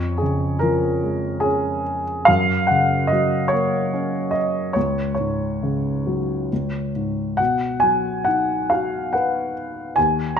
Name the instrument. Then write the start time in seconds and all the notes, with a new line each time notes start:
grand piano
Already playing: F2 C#5
0.18 G#4
0.22 C#3
0.59 F3 A#4
1.03 G#3
1.40 C#4 G#4
2.25 F#2 F5
2.67 C#3 F#5
3.07 D#5
3.13 F#3
3.48 A#3 C#5
3.93 C#4
4.31 D#5
4.73 C#2 C#5
5.15 C#5
5.19 G#2
5.63 C#3
6.07 F#3
6.53 C#2
6.96 G#2
7.37 B2 F#5
7.80 F#3 G#5
8.25 D#4 F#5
8.70 F#4 F5
9.13 B4 F#5
9.96 D#2 G#5
10.37 A#5